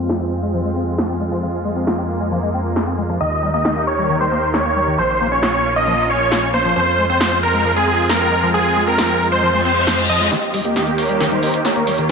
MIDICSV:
0, 0, Header, 1, 8, 480
1, 0, Start_track
1, 0, Key_signature, -4, "minor"
1, 0, Tempo, 444444
1, 1542, Time_signature, 4, 2, 24, 8
1, 13083, End_track
2, 0, Start_track
2, 0, Title_t, "Supersaw synth"
2, 0, Program_c, 0, 81
2, 3462, Note_on_c, 0, 75, 95
2, 3776, Note_off_c, 0, 75, 0
2, 3821, Note_on_c, 0, 75, 91
2, 4136, Note_off_c, 0, 75, 0
2, 4182, Note_on_c, 0, 73, 96
2, 4496, Note_off_c, 0, 73, 0
2, 4542, Note_on_c, 0, 72, 91
2, 4856, Note_off_c, 0, 72, 0
2, 4902, Note_on_c, 0, 73, 95
2, 5321, Note_off_c, 0, 73, 0
2, 5383, Note_on_c, 0, 72, 91
2, 5696, Note_off_c, 0, 72, 0
2, 5742, Note_on_c, 0, 73, 92
2, 6161, Note_off_c, 0, 73, 0
2, 6223, Note_on_c, 0, 75, 92
2, 6536, Note_off_c, 0, 75, 0
2, 6583, Note_on_c, 0, 73, 92
2, 7001, Note_off_c, 0, 73, 0
2, 7061, Note_on_c, 0, 72, 94
2, 7271, Note_off_c, 0, 72, 0
2, 7301, Note_on_c, 0, 72, 95
2, 7615, Note_off_c, 0, 72, 0
2, 7663, Note_on_c, 0, 72, 95
2, 7977, Note_off_c, 0, 72, 0
2, 8024, Note_on_c, 0, 70, 95
2, 8337, Note_off_c, 0, 70, 0
2, 8385, Note_on_c, 0, 68, 95
2, 8697, Note_off_c, 0, 68, 0
2, 8745, Note_on_c, 0, 70, 92
2, 9162, Note_off_c, 0, 70, 0
2, 9223, Note_on_c, 0, 68, 94
2, 9537, Note_off_c, 0, 68, 0
2, 9583, Note_on_c, 0, 70, 91
2, 10001, Note_off_c, 0, 70, 0
2, 10064, Note_on_c, 0, 72, 98
2, 10377, Note_off_c, 0, 72, 0
2, 10423, Note_on_c, 0, 72, 98
2, 10841, Note_off_c, 0, 72, 0
2, 10901, Note_on_c, 0, 75, 89
2, 11111, Note_off_c, 0, 75, 0
2, 11140, Note_on_c, 0, 75, 99
2, 11141, Note_on_c, 0, 67, 74
2, 11455, Note_off_c, 0, 75, 0
2, 11456, Note_off_c, 0, 67, 0
2, 11502, Note_on_c, 0, 67, 77
2, 11502, Note_on_c, 0, 75, 91
2, 11816, Note_off_c, 0, 67, 0
2, 11816, Note_off_c, 0, 75, 0
2, 11861, Note_on_c, 0, 70, 79
2, 11861, Note_on_c, 0, 73, 95
2, 12175, Note_off_c, 0, 70, 0
2, 12175, Note_off_c, 0, 73, 0
2, 12221, Note_on_c, 0, 72, 94
2, 12222, Note_on_c, 0, 63, 75
2, 12536, Note_off_c, 0, 63, 0
2, 12536, Note_off_c, 0, 72, 0
2, 12580, Note_on_c, 0, 70, 78
2, 12580, Note_on_c, 0, 73, 94
2, 12999, Note_off_c, 0, 70, 0
2, 12999, Note_off_c, 0, 73, 0
2, 13083, End_track
3, 0, Start_track
3, 0, Title_t, "Supersaw synth"
3, 0, Program_c, 1, 81
3, 0, Note_on_c, 1, 56, 75
3, 0, Note_on_c, 1, 60, 71
3, 0, Note_on_c, 1, 65, 82
3, 1523, Note_off_c, 1, 60, 0
3, 1540, Note_on_c, 1, 58, 71
3, 3418, Note_off_c, 1, 65, 0
3, 3423, Note_off_c, 1, 56, 0
3, 3442, Note_off_c, 1, 58, 0
3, 3462, Note_on_c, 1, 51, 78
3, 3462, Note_on_c, 1, 63, 68
3, 3463, Note_on_c, 1, 67, 72
3, 3463, Note_on_c, 1, 70, 82
3, 5363, Note_off_c, 1, 51, 0
3, 5363, Note_off_c, 1, 63, 0
3, 5363, Note_off_c, 1, 67, 0
3, 5364, Note_off_c, 1, 70, 0
3, 5383, Note_on_c, 1, 58, 77
3, 5383, Note_on_c, 1, 61, 72
3, 5383, Note_on_c, 1, 65, 86
3, 7283, Note_off_c, 1, 58, 0
3, 7284, Note_off_c, 1, 61, 0
3, 7284, Note_off_c, 1, 65, 0
3, 7304, Note_on_c, 1, 56, 77
3, 7304, Note_on_c, 1, 65, 88
3, 7305, Note_on_c, 1, 60, 74
3, 11105, Note_off_c, 1, 56, 0
3, 11105, Note_off_c, 1, 60, 0
3, 11105, Note_off_c, 1, 65, 0
3, 11139, Note_on_c, 1, 67, 92
3, 11140, Note_on_c, 1, 39, 79
3, 11140, Note_on_c, 1, 51, 76
3, 11140, Note_on_c, 1, 58, 74
3, 13041, Note_off_c, 1, 67, 0
3, 13042, Note_off_c, 1, 39, 0
3, 13042, Note_off_c, 1, 51, 0
3, 13042, Note_off_c, 1, 58, 0
3, 13083, End_track
4, 0, Start_track
4, 0, Title_t, "Acid bass"
4, 0, Program_c, 2, 38
4, 102, Note_on_c, 2, 65, 80
4, 216, Note_off_c, 2, 65, 0
4, 222, Note_on_c, 2, 60, 75
4, 268, Note_off_c, 2, 60, 0
4, 461, Note_on_c, 2, 56, 99
4, 576, Note_off_c, 2, 56, 0
4, 581, Note_on_c, 2, 53, 97
4, 658, Note_off_c, 2, 53, 0
4, 701, Note_on_c, 2, 56, 75
4, 778, Note_off_c, 2, 56, 0
4, 821, Note_on_c, 2, 60, 71
4, 898, Note_off_c, 2, 60, 0
4, 1061, Note_on_c, 2, 65, 81
4, 1138, Note_off_c, 2, 65, 0
4, 1181, Note_on_c, 2, 60, 74
4, 1258, Note_off_c, 2, 60, 0
4, 1301, Note_on_c, 2, 56, 78
4, 1347, Note_off_c, 2, 56, 0
4, 1421, Note_on_c, 2, 53, 101
4, 1536, Note_off_c, 2, 53, 0
4, 1542, Note_on_c, 2, 53, 78
4, 1587, Note_off_c, 2, 53, 0
4, 1782, Note_on_c, 2, 56, 74
4, 1858, Note_off_c, 2, 56, 0
4, 1902, Note_on_c, 2, 60, 75
4, 2016, Note_off_c, 2, 60, 0
4, 2022, Note_on_c, 2, 65, 75
4, 2136, Note_off_c, 2, 65, 0
4, 2141, Note_on_c, 2, 60, 78
4, 2187, Note_off_c, 2, 60, 0
4, 2382, Note_on_c, 2, 56, 99
4, 2496, Note_off_c, 2, 56, 0
4, 2501, Note_on_c, 2, 53, 102
4, 2578, Note_off_c, 2, 53, 0
4, 2622, Note_on_c, 2, 56, 73
4, 2698, Note_off_c, 2, 56, 0
4, 2743, Note_on_c, 2, 60, 73
4, 2818, Note_off_c, 2, 60, 0
4, 2981, Note_on_c, 2, 65, 81
4, 3058, Note_off_c, 2, 65, 0
4, 3101, Note_on_c, 2, 60, 74
4, 3178, Note_off_c, 2, 60, 0
4, 3221, Note_on_c, 2, 56, 77
4, 3267, Note_off_c, 2, 56, 0
4, 3341, Note_on_c, 2, 53, 101
4, 3455, Note_off_c, 2, 53, 0
4, 3461, Note_on_c, 2, 51, 79
4, 3507, Note_off_c, 2, 51, 0
4, 3701, Note_on_c, 2, 55, 77
4, 3778, Note_off_c, 2, 55, 0
4, 3821, Note_on_c, 2, 58, 72
4, 3936, Note_off_c, 2, 58, 0
4, 3941, Note_on_c, 2, 63, 77
4, 4055, Note_off_c, 2, 63, 0
4, 4062, Note_on_c, 2, 58, 79
4, 4108, Note_off_c, 2, 58, 0
4, 4302, Note_on_c, 2, 55, 100
4, 4416, Note_off_c, 2, 55, 0
4, 4422, Note_on_c, 2, 51, 98
4, 4498, Note_off_c, 2, 51, 0
4, 4543, Note_on_c, 2, 55, 74
4, 4618, Note_off_c, 2, 55, 0
4, 4662, Note_on_c, 2, 58, 72
4, 4738, Note_off_c, 2, 58, 0
4, 4902, Note_on_c, 2, 63, 84
4, 4978, Note_off_c, 2, 63, 0
4, 5021, Note_on_c, 2, 58, 73
4, 5098, Note_off_c, 2, 58, 0
4, 5141, Note_on_c, 2, 55, 77
4, 5187, Note_off_c, 2, 55, 0
4, 5260, Note_on_c, 2, 51, 105
4, 5375, Note_off_c, 2, 51, 0
4, 5381, Note_on_c, 2, 53, 79
4, 5427, Note_off_c, 2, 53, 0
4, 5622, Note_on_c, 2, 58, 74
4, 5698, Note_off_c, 2, 58, 0
4, 5741, Note_on_c, 2, 61, 74
4, 5856, Note_off_c, 2, 61, 0
4, 5861, Note_on_c, 2, 65, 78
4, 5976, Note_off_c, 2, 65, 0
4, 5981, Note_on_c, 2, 61, 77
4, 6027, Note_off_c, 2, 61, 0
4, 6222, Note_on_c, 2, 58, 98
4, 6336, Note_off_c, 2, 58, 0
4, 6341, Note_on_c, 2, 53, 103
4, 6417, Note_off_c, 2, 53, 0
4, 6462, Note_on_c, 2, 58, 72
4, 6538, Note_off_c, 2, 58, 0
4, 6581, Note_on_c, 2, 61, 72
4, 6658, Note_off_c, 2, 61, 0
4, 6822, Note_on_c, 2, 65, 82
4, 6898, Note_off_c, 2, 65, 0
4, 6942, Note_on_c, 2, 61, 77
4, 7018, Note_off_c, 2, 61, 0
4, 7062, Note_on_c, 2, 58, 76
4, 7108, Note_off_c, 2, 58, 0
4, 7182, Note_on_c, 2, 53, 101
4, 7296, Note_off_c, 2, 53, 0
4, 7302, Note_on_c, 2, 53, 80
4, 7348, Note_off_c, 2, 53, 0
4, 7543, Note_on_c, 2, 56, 76
4, 7618, Note_off_c, 2, 56, 0
4, 7663, Note_on_c, 2, 60, 72
4, 7777, Note_off_c, 2, 60, 0
4, 7783, Note_on_c, 2, 65, 78
4, 7897, Note_off_c, 2, 65, 0
4, 7904, Note_on_c, 2, 60, 75
4, 7949, Note_off_c, 2, 60, 0
4, 8142, Note_on_c, 2, 56, 99
4, 8256, Note_off_c, 2, 56, 0
4, 8262, Note_on_c, 2, 53, 100
4, 8338, Note_off_c, 2, 53, 0
4, 8383, Note_on_c, 2, 56, 71
4, 8459, Note_off_c, 2, 56, 0
4, 8503, Note_on_c, 2, 60, 72
4, 8578, Note_off_c, 2, 60, 0
4, 8742, Note_on_c, 2, 65, 81
4, 8818, Note_off_c, 2, 65, 0
4, 8862, Note_on_c, 2, 60, 75
4, 8938, Note_off_c, 2, 60, 0
4, 8982, Note_on_c, 2, 56, 76
4, 9028, Note_off_c, 2, 56, 0
4, 9102, Note_on_c, 2, 53, 104
4, 9216, Note_off_c, 2, 53, 0
4, 9222, Note_on_c, 2, 53, 83
4, 9267, Note_off_c, 2, 53, 0
4, 9463, Note_on_c, 2, 56, 75
4, 9538, Note_off_c, 2, 56, 0
4, 9583, Note_on_c, 2, 60, 75
4, 9697, Note_off_c, 2, 60, 0
4, 9703, Note_on_c, 2, 65, 76
4, 9817, Note_off_c, 2, 65, 0
4, 9822, Note_on_c, 2, 60, 76
4, 9868, Note_off_c, 2, 60, 0
4, 10064, Note_on_c, 2, 56, 105
4, 10177, Note_off_c, 2, 56, 0
4, 10182, Note_on_c, 2, 53, 102
4, 10258, Note_off_c, 2, 53, 0
4, 10303, Note_on_c, 2, 56, 76
4, 10378, Note_off_c, 2, 56, 0
4, 10423, Note_on_c, 2, 60, 96
4, 10498, Note_off_c, 2, 60, 0
4, 10662, Note_on_c, 2, 53, 102
4, 10738, Note_off_c, 2, 53, 0
4, 10782, Note_on_c, 2, 56, 76
4, 10896, Note_off_c, 2, 56, 0
4, 10902, Note_on_c, 2, 53, 77
4, 11016, Note_off_c, 2, 53, 0
4, 11023, Note_on_c, 2, 56, 104
4, 11137, Note_off_c, 2, 56, 0
4, 11142, Note_on_c, 2, 51, 83
4, 11188, Note_off_c, 2, 51, 0
4, 11382, Note_on_c, 2, 55, 75
4, 11458, Note_off_c, 2, 55, 0
4, 11502, Note_on_c, 2, 58, 73
4, 11616, Note_off_c, 2, 58, 0
4, 11622, Note_on_c, 2, 63, 83
4, 11736, Note_off_c, 2, 63, 0
4, 11742, Note_on_c, 2, 58, 78
4, 11788, Note_off_c, 2, 58, 0
4, 11981, Note_on_c, 2, 55, 101
4, 12096, Note_off_c, 2, 55, 0
4, 12102, Note_on_c, 2, 51, 105
4, 12178, Note_off_c, 2, 51, 0
4, 12223, Note_on_c, 2, 55, 74
4, 12299, Note_off_c, 2, 55, 0
4, 12343, Note_on_c, 2, 58, 73
4, 12418, Note_off_c, 2, 58, 0
4, 12583, Note_on_c, 2, 63, 86
4, 12659, Note_off_c, 2, 63, 0
4, 12703, Note_on_c, 2, 58, 76
4, 12779, Note_off_c, 2, 58, 0
4, 12823, Note_on_c, 2, 55, 77
4, 12868, Note_off_c, 2, 55, 0
4, 12943, Note_on_c, 2, 51, 104
4, 13057, Note_off_c, 2, 51, 0
4, 13083, End_track
5, 0, Start_track
5, 0, Title_t, "Analog synth bass"
5, 0, Program_c, 3, 38
5, 0, Note_on_c, 3, 41, 92
5, 3438, Note_off_c, 3, 41, 0
5, 3462, Note_on_c, 3, 39, 91
5, 5358, Note_off_c, 3, 39, 0
5, 5381, Note_on_c, 3, 34, 91
5, 7278, Note_off_c, 3, 34, 0
5, 7302, Note_on_c, 3, 41, 92
5, 11118, Note_off_c, 3, 41, 0
5, 13083, End_track
6, 0, Start_track
6, 0, Title_t, "Reverse cymbal"
6, 0, Program_c, 4, 119
6, 10182, Note_on_c, 4, 60, 74
6, 11142, Note_off_c, 4, 60, 0
6, 13083, End_track
7, 0, Start_track
7, 0, Title_t, "Riser"
7, 0, Program_c, 5, 103
7, 11142, Note_on_c, 5, 60, 79
7, 13083, Note_off_c, 5, 60, 0
7, 13083, End_track
8, 0, Start_track
8, 0, Title_t, "Drums"
8, 102, Note_on_c, 9, 38, 121
8, 210, Note_off_c, 9, 38, 0
8, 1063, Note_on_c, 9, 38, 114
8, 1171, Note_off_c, 9, 38, 0
8, 2021, Note_on_c, 9, 38, 110
8, 2129, Note_off_c, 9, 38, 0
8, 2981, Note_on_c, 9, 38, 112
8, 3089, Note_off_c, 9, 38, 0
8, 3941, Note_on_c, 9, 38, 108
8, 4049, Note_off_c, 9, 38, 0
8, 4901, Note_on_c, 9, 38, 108
8, 5009, Note_off_c, 9, 38, 0
8, 5861, Note_on_c, 9, 38, 104
8, 5969, Note_off_c, 9, 38, 0
8, 6822, Note_on_c, 9, 38, 110
8, 6930, Note_off_c, 9, 38, 0
8, 7783, Note_on_c, 9, 38, 108
8, 7891, Note_off_c, 9, 38, 0
8, 8742, Note_on_c, 9, 38, 110
8, 8850, Note_off_c, 9, 38, 0
8, 9702, Note_on_c, 9, 38, 122
8, 9810, Note_off_c, 9, 38, 0
8, 10662, Note_on_c, 9, 38, 117
8, 10770, Note_off_c, 9, 38, 0
8, 11141, Note_on_c, 9, 38, 46
8, 11141, Note_on_c, 9, 42, 55
8, 11249, Note_off_c, 9, 38, 0
8, 11249, Note_off_c, 9, 42, 0
8, 11261, Note_on_c, 9, 42, 27
8, 11369, Note_off_c, 9, 42, 0
8, 11381, Note_on_c, 9, 46, 99
8, 11489, Note_off_c, 9, 46, 0
8, 11501, Note_on_c, 9, 42, 55
8, 11609, Note_off_c, 9, 42, 0
8, 11621, Note_on_c, 9, 38, 47
8, 11621, Note_on_c, 9, 42, 53
8, 11729, Note_off_c, 9, 38, 0
8, 11729, Note_off_c, 9, 42, 0
8, 11741, Note_on_c, 9, 42, 27
8, 11849, Note_off_c, 9, 42, 0
8, 11860, Note_on_c, 9, 46, 101
8, 11968, Note_off_c, 9, 46, 0
8, 11980, Note_on_c, 9, 42, 56
8, 12088, Note_off_c, 9, 42, 0
8, 12101, Note_on_c, 9, 38, 49
8, 12101, Note_on_c, 9, 42, 53
8, 12209, Note_off_c, 9, 38, 0
8, 12209, Note_off_c, 9, 42, 0
8, 12220, Note_on_c, 9, 42, 27
8, 12328, Note_off_c, 9, 42, 0
8, 12341, Note_on_c, 9, 46, 100
8, 12449, Note_off_c, 9, 46, 0
8, 12462, Note_on_c, 9, 42, 54
8, 12570, Note_off_c, 9, 42, 0
8, 12581, Note_on_c, 9, 38, 50
8, 12581, Note_on_c, 9, 42, 53
8, 12689, Note_off_c, 9, 38, 0
8, 12689, Note_off_c, 9, 42, 0
8, 12701, Note_on_c, 9, 42, 27
8, 12809, Note_off_c, 9, 42, 0
8, 12821, Note_on_c, 9, 46, 101
8, 12929, Note_off_c, 9, 46, 0
8, 12941, Note_on_c, 9, 42, 53
8, 13049, Note_off_c, 9, 42, 0
8, 13083, End_track
0, 0, End_of_file